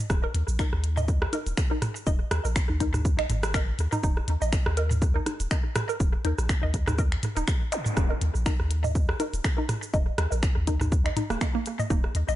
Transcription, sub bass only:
0.10 D#1
0.34 D#2
0.48 A#1
0.73 D#2
1.47 D#1
2.07 D#1
2.31 D#2
2.45 A#1
2.69 D#2
3.19 A#1
3.30 G#1
3.79 D#2
4.03 D#1
4.28 D#2
4.42 A#1
4.66 D#2
5.40 D#1
6.00 D#1
6.25 D#2
6.38 A#1
6.63 D#2
7.37 D#1
7.97 D#1
8.21 D#2
8.35 A#1
8.60 D#2
9.33 D#1
9.94 D#1
10.18 D#2
10.32 A#1
10.56 D#2
11.30 D#1
11.90 D#1
12.15 D#2
12.29 A#1

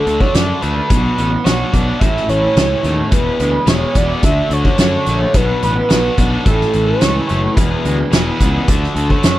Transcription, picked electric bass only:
0.07 D2
0.34 F#2
0.63 D2
0.90 B1
1.18 A1
1.46 B1
1.73 B1
2.01 A1
2.29 A1
2.56 C#2
2.84 D#2
3.12 E1
3.40 D2
3.67 E1
3.95 E1
4.23 D2
4.50 D2
4.79 F#2
5.07 A#1
5.34 B1
5.63 A1
5.92 B1
6.18 B1
6.46 A1
6.75 A1
7.02 C#2
7.31 F#1
7.57 E1
7.85 D2
8.13 E1
8.40 C#2
8.68 D2
8.96 D2
9.25 F#2

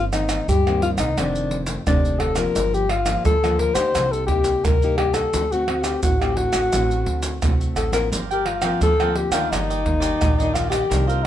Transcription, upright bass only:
Already playing: G1
0.48 G2
0.98 C2
1.17 F1
1.87 F1
2.56 G1
3.26 D2
3.76 D2
3.96 C2
4.65 C2
5.34 D2
6.04 A1
6.54 A1
6.73 A1
7.07 D2
7.43 C2
7.76 A1
8.12 G1
8.81 D2
9.31 D2
9.52 G1
10.22 A#1
10.91 C2

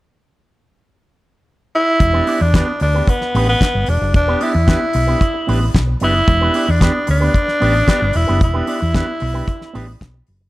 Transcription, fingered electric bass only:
2.01 E1
2.41 E2
2.81 D2
3.35 A1
3.75 G1
3.88 E1
4.01 F#1
4.15 E1
4.55 E2
4.95 B1
5.49 A1
5.75 B1
6.02 F#1
6.28 E1
6.69 E2
7.09 D2
7.62 A1
8.02 G1
8.15 E1
8.29 F#1
8.41 E1
8.82 E2
9.22 B1
9.75 A1
10.02 B1
10.28 F#1

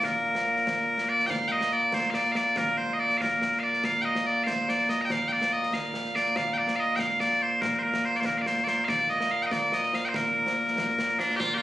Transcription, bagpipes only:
Already playing: A#2 A#3
0.04 A#4
1.09 D5
1.26 F5 G5
1.48 D#5 G5
1.73 D5
1.94 C5
2.10 F5
2.15 D5
2.32 F5
2.36 D5
2.57 A#4
2.77 C5
2.93 D#5
3.00 D5
3.18 A#4 F5
3.59 D5 F5
3.85 F5
4.01 D#5 G5
4.26 D5
4.44 C5 F5
4.69 D5
4.89 D#5
5.01 G5 A#5
5.11 F5
5.28 G5
5.32 D5
5.53 D#5
5.74 F5
6.15 D5
6.36 F5
6.53 G5
6.58 D5
6.76 D#5 F5
6.96 F5 G5
7.20 D5
7.42 C5
7.61 A#4
7.79 A#4 C5
8.05 C5
8.16 D5
8.20 C5
8.26 A#4
8.38 D5 F5
8.47 C5
8.64 D5
8.68 C5
8.85 D5 F5
9.10 D#5
9.31 F5
9.42 D#5 G5
9.52 D5
9.74 D#5
9.95 F5
10.05 C5 G5
10.16 A#4
11.19 D4
11.36 F4 G4
11.54 F4 G4

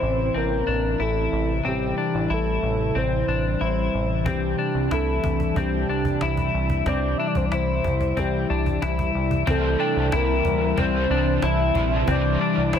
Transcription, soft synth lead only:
Already playing: C5
0.37 A#4
1.02 A4
1.68 G4
2.33 A4
2.98 C5
3.63 C5
4.28 G4
4.93 A4
5.59 G4
6.88 D5
7.18 E5
7.27 D5
7.37 C5
7.46 D5
7.54 C5
8.19 G4
9.50 A4
10.16 A#4
10.80 C5
11.45 E5
12.12 D5
12.76 C5

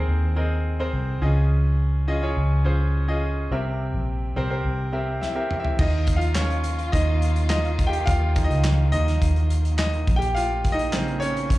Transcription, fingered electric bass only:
0.08 D#2
0.93 C2
1.22 C#2
2.37 C#2
3.51 C2
3.94 A#1
4.37 C2
4.65 C2
5.79 D#2
6.93 D#2
8.07 D#2
8.50 C#2
8.93 D#2
9.22 D#2
10.08 A#1
11.50 A#1

